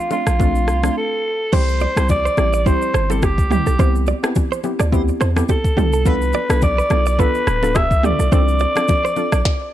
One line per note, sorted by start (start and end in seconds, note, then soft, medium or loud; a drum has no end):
0.00 0.12 F4 medium
0.00 shaker medium
0.11 0.27 A3 medium
0.11 0.27 C4 medium
0.11 0.27 D4 medium
0.11 0.27 F4 medium
0.11 0.93 F4 medium
0.11 low bongo medium
0.11 shaker medium
0.27 0.69 A#1 medium
0.27 cross-stick loud
0.27 shaker medium
0.39 0.80 A3 loud
0.39 0.80 C4 medium
0.39 0.80 D4 medium
0.39 0.80 F4 loud
0.39 kick loud
0.39 low conga medium
0.39 shaker medium
0.55 shaker soft
0.68 0.90 C2 medium
0.68 cross-stick medium
0.68 shaker medium
0.83 0.96 A3 medium
0.83 0.96 C4 medium
0.83 0.96 D4 medium
0.83 0.96 F4 medium
0.83 cross-stick medium
0.83 low bongo medium
0.83 shaker medium
0.97 1.55 A4 medium
1.52 1.87 C2 loud
1.52 1.93 G3 medium
1.52 1.93 C4 medium
1.52 1.93 E4 medium
1.52 1.93 G4 loud
1.52 1.62 C5 medium
1.52 2.10 C5 loud
1.52 kick loud
1.52 crash loud
1.52 low conga medium
1.52 shaker medium
1.69 shaker soft
1.80 1.90 D5 medium
1.80 high bongo medium
1.80 low bongo medium
1.80 shaker soft
1.96 2.28 C2 medium
1.96 2.09 G3 medium
1.96 2.09 C4 medium
1.96 2.09 E4 medium
1.96 2.10 G4 medium
1.96 cross-stick loud
1.96 shaker medium
2.09 2.63 D5 loud
2.09 kick medium
2.09 high bongo medium
2.09 low conga medium
2.09 shaker medium
2.25 2.32 C5 medium
2.25 shaker medium
2.37 2.72 A1 loud
2.37 2.53 G3 medium
2.37 2.53 C4 medium
2.37 2.53 E4 medium
2.37 2.53 G4 medium
2.37 cross-stick medium
2.37 low bongo medium
2.37 shaker medium
2.53 2.61 D5 medium
2.53 shaker medium
2.66 3.06 G3 loud
2.66 3.06 C4 medium
2.66 3.06 E4 medium
2.66 3.06 G4 loud
2.66 2.75 C5 medium
2.66 3.07 C5 loud
2.66 kick loud
2.66 low conga medium
2.66 shaker medium
2.82 shaker soft
2.94 3.40 G1 loud
2.94 3.03 C5 medium
2.94 cross-stick medium
2.94 shaker medium
3.10 3.22 G3 medium
3.10 3.23 C4 medium
3.10 3.23 E4 medium
3.10 3.23 G4 medium
3.10 3.17 A4 medium
3.10 3.25 A4 medium
3.10 low bongo medium
3.10 shaker medium
3.22 3.32 G4 medium
3.22 3.52 G4 medium
3.22 kick medium
3.22 cross-stick medium
3.22 high bongo medium
3.22 shaker medium
3.38 3.60 D2 medium
3.38 kick loud
3.38 shaker medium
3.51 3.66 G3 medium
3.51 3.66 C4 medium
3.51 3.67 E4 medium
3.51 3.67 G4 medium
3.51 3.60 G4 medium
3.51 4.04 G4 medium
3.51 mid tom loud
3.51 shaker medium
3.66 3.76 B1 medium
3.66 3.74 A4 medium
3.66 shaker medium
3.79 4.13 C2 loud
3.79 4.19 B3 medium
3.79 4.19 C4 medium
3.79 4.19 E4 medium
3.79 4.20 G4 loud
3.79 3.88 C5 medium
3.79 kick loud
3.79 low conga medium
3.79 shaker medium
3.95 shaker medium
4.06 4.17 D5 medium
4.06 high bongo medium
4.06 low bongo medium
4.06 shaker soft
4.23 4.36 B3 medium
4.23 4.36 C4 medium
4.23 4.36 E4 medium
4.23 4.36 G4 medium
4.23 cross-stick loud
4.23 shaker medium
4.35 kick medium
4.35 high bongo medium
4.35 low conga medium
4.35 shaker medium
4.52 4.59 C5 medium
4.52 shaker medium
4.64 4.80 B3 medium
4.64 4.80 C4 medium
4.64 4.80 E4 medium
4.64 4.80 G4 medium
4.64 low bongo medium
4.64 shaker medium
4.79 5.12 D2 medium
4.79 4.93 D5 medium
4.79 cross-stick medium
4.79 shaker medium
4.92 5.32 B3 loud
4.92 5.33 C4 medium
4.92 5.33 E4 medium
4.92 5.33 G4 loud
4.92 5.02 C5 medium
4.92 kick loud
4.92 low conga medium
4.92 shaker medium
5.08 shaker soft
5.21 5.43 E2 medium
5.21 5.30 C5 medium
5.21 cross-stick medium
5.21 shaker medium
5.36 5.49 B3 medium
5.36 5.49 C4 medium
5.36 5.49 E4 medium
5.36 5.49 G4 medium
5.36 5.44 A4 medium
5.36 cross-stick loud
5.36 low bongo medium
5.36 shaker medium
5.49 5.58 G4 medium
5.49 6.08 A4 medium
5.49 kick medium
5.49 high bongo medium
5.49 shaker medium
5.64 kick loud
5.64 shaker medium
5.77 6.33 C2 loud
5.77 5.93 B3 medium
5.77 5.93 D4 medium
5.77 5.93 F4 medium
5.77 5.87 G4 medium
5.77 5.93 A4 medium
5.77 mid tom loud
5.77 shaker medium
5.93 6.06 A4 medium
5.93 shaker medium
6.05 6.46 B3 loud
6.05 6.46 D4 medium
6.05 6.46 F4 medium
6.05 6.46 A4 loud
6.05 6.15 B4 loud
6.05 6.63 B4 loud
6.05 kick loud
6.05 low conga medium
6.05 shaker medium
6.22 shaker soft
6.33 6.43 D5 medium
6.33 high bongo medium
6.33 low bongo medium
6.33 shaker soft
6.49 6.81 B1 medium
6.49 6.62 B3 medium
6.49 6.62 D4 medium
6.49 6.62 F4 medium
6.49 6.62 A4 medium
6.49 cross-stick loud
6.49 shaker medium
6.62 7.22 D5 loud
6.62 kick medium
6.62 high bongo medium
6.62 low conga medium
6.62 shaker medium
6.78 6.85 B4 medium
6.78 shaker medium
6.90 7.25 B1 loud
6.90 7.06 B3 medium
6.90 7.06 D4 medium
6.90 7.06 F4 medium
6.90 7.06 A4 medium
6.90 cross-stick medium
6.90 low bongo medium
6.90 shaker medium
7.06 7.14 D5 medium
7.06 shaker medium
7.19 7.59 B3 loud
7.19 7.59 D4 medium
7.19 7.59 F4 medium
7.19 7.59 A4 loud
7.19 7.28 B4 medium
7.19 7.78 B4 loud
7.19 kick loud
7.19 low conga medium
7.19 shaker medium
7.35 shaker soft
7.47 7.92 D1 loud
7.47 7.56 B4 medium
7.47 cross-stick medium
7.47 shaker medium
7.62 7.75 B3 medium
7.62 7.75 D4 medium
7.62 7.75 F4 medium
7.62 7.76 A4 medium
7.62 7.70 A4 medium
7.62 low bongo medium
7.62 shaker medium
7.75 7.85 G4 medium
7.75 8.07 E5 loud
7.75 kick medium
7.75 cross-stick loud
7.75 high bongo medium
7.75 shaker medium
7.91 8.13 D2 medium
7.91 kick loud
7.91 shaker medium
8.03 8.19 B3 medium
8.03 8.19 D4 medium
8.03 8.19 F4 medium
8.03 8.13 G4 medium
8.03 8.19 A4 medium
8.03 8.33 D5 loud
8.03 mid tom medium
8.03 shaker medium
8.19 8.29 B1 medium
8.19 8.27 A4 medium
8.19 shaker medium
8.32 8.66 C2 loud
8.32 8.72 C4 loud
8.32 8.72 D4 medium
8.32 8.72 F4 medium
8.32 8.72 A4 loud
8.32 8.41 C5 loud
8.32 9.73 D5 loud
8.32 kick loud
8.32 low conga medium
8.32 shaker medium
8.48 shaker medium
8.59 8.69 D5 medium
8.59 high bongo medium
8.59 shaker soft
8.76 8.89 C4 medium
8.76 8.89 D4 medium
8.76 8.89 F4 medium
8.76 8.89 A4 medium
8.76 cross-stick loud
8.76 low bongo medium
8.76 shaker medium
8.88 kick medium
8.88 high bongo medium
8.88 low conga medium
8.88 shaker medium
9.05 9.12 C5 medium
9.05 shaker medium
9.16 9.32 C4 medium
9.16 9.32 D4 medium
9.16 9.33 F4 medium
9.16 9.33 A4 medium
9.16 low bongo medium
9.16 shaker medium
9.32 9.42 A#1 medium
9.32 9.40 D5 medium
9.32 cross-stick loud
9.32 shaker medium
9.45 kick loud
9.45 snare medium